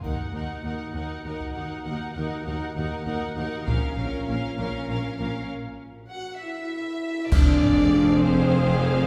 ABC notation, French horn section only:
X:1
M:6/8
L:1/8
Q:3/8=66
K:Ebm
V:1 name="French horn section"
[B,G]6- | [B,G]6 | [DF]6 | z2 G _F3 |
[K:Fdor] D3 C3 |]